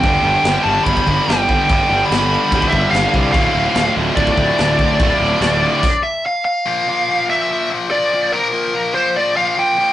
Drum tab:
CC |x---x---x---x---|x---x---x---x---|x---x---x---x---|x---x---x-------|
SD |----o-------o---|----o-------o---|----o-------o---|----o-----------|
BD |o-------ooo---o-|o-------ooo---o-|o-------ooo---o-|o-------o-------|

CC |----------------|----------------|
SD |----------------|----------------|
BD |----------------|----------------|